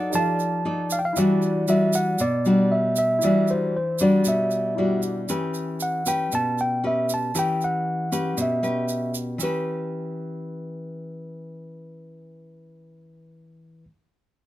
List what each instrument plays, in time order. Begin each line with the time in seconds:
Already playing: nylon-string guitar F#3 D#4 A4 D5, grand piano E4 A4 C5 F#5, tine electric piano F#5
0.10 nylon-string guitar F3, grand piano D#4 G4 A4, shaker
0.14 grand piano D5 F5, tine electric piano A5
0.39 shaker
0.65 nylon-string guitar D#4 A4 D5
0.90 tine electric piano F5, shaker
0.99 tine electric piano G5
1.05 tine electric piano F5
1.13 nylon-string guitar E3 G3, grand piano E4, shaker
1.17 nylon-string guitar D4 F#4, grand piano D5 F#5, tine electric piano D5
1.42 shaker
1.68 nylon-string guitar G3 D4 F#4, tine electric piano E5, shaker
1.93 tine electric piano F#5, shaker
2.19 nylon-string guitar B2, tine electric piano D5, shaker
2.45 nylon-string guitar G3 D4 F#4, shaker
2.72 tine electric piano E5
2.96 tine electric piano E5, shaker
3.19 grand piano E4 D5, shaker
3.23 nylon-string guitar E3 G3 D4 F#4, grand piano E5
3.47 tine electric piano C5, shaker
3.77 tine electric piano C5
3.99 nylon-string guitar G3 D4 F#4, shaker
4.03 tine electric piano D5
4.25 nylon-string guitar B2, tine electric piano E5, shaker
4.51 shaker
4.75 nylon-string guitar G3 D4, grand piano E4 G4 D5
4.79 nylon-string guitar F#4
5.02 shaker
5.29 nylon-string guitar E3 C#4 G4 B4, shaker
5.54 shaker
5.80 tine electric piano F#5, shaker
6.06 nylon-string guitar C#4 G4 B4, tine electric piano G5, shaker
6.32 nylon-string guitar B2, tine electric piano A5, shaker
6.58 tine electric piano G5, shaker
6.84 nylon-string guitar C#4 G4 B4, tine electric piano E5
7.09 shaker
7.14 tine electric piano A5
7.35 nylon-string guitar E3 C#4 G4 B4, shaker
7.39 tine electric piano G5
7.61 tine electric piano F#5, shaker
8.12 nylon-string guitar C#4 G4 B4, shaker
8.37 nylon-string guitar B2, shaker
8.42 tine electric piano E5
8.63 nylon-string guitar C#4 G4 B4, shaker
8.88 shaker
9.14 shaker
9.38 nylon-string guitar E3 C#4, shaker
9.42 nylon-string guitar G4 B4, tine electric piano B4